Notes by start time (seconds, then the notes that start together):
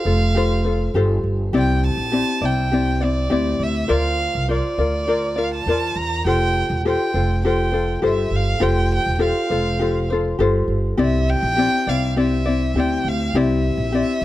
Already playing: F5
0.05 F1 F4 A4 C5
0.35 F4 G4 A4 C5
0.64 F4 A4 C5
0.94 G1 F4 G4 A4 C5
1.24 G1
1.53 C2 C4 E4 G4 D5
1.58 G5
1.86 A5
1.97 A#1
2.12 C4 E4 G4 D5
2.41 C2 C4 E4 D5 G5
2.71 C4 E4 G4 D5
3.01 C4 E4 D5
3.30 D2 C4 E4 G4 D5
3.60 D2 E5
3.88 D2 F4 A#4 C5 D5 F5
4.35 C2
4.48 F4 A#4 C5 D5
4.78 D2 F4 A#4 D5
5.07 F4 A#4 C5 D5
5.36 F4 A#4 D5 F5
5.54 A5
5.66 E2 F4 A#4 C5 D5
5.96 E2 A#5
6.25 F1 F4 G4 A4 C5 G5
6.70 E1
6.85 F4 G4 A4 C5 G5
7.14 F1 F4 A4 C5
7.44 F4 G4 A4 C5 G5
7.72 F4 A4 C5
8.02 G1 F4 G4 A4 C5
8.06 E5
8.31 G1
8.35 F5
8.60 F1 F4 G4 A4 C5 G5
8.94 G5
9.06 E1
9.15 F4 G4 G5
9.19 A4 C5 F5
9.50 F1 F4 A4 C5
9.79 F4 G4 A4 C5
10.10 F4 A4 C5
10.39 G1 F4 G4 A4 C5
10.68 G1
10.97 C2 C4 E4 G4 D5 E5
11.29 G5
11.43 A#1
11.57 C4 E4 G4 D5
11.87 C2 C4 E4 D5 F5
12.16 C4 E4 G4 D5 E5
12.46 C4 E4 D5
12.74 D2 C4 E4 G4 D5
12.79 G5
13.04 D2 F5
13.34 C2 C4 E4 G4 D5 E5
13.77 A#1
13.92 C4 E4 G4 D5
14.21 C2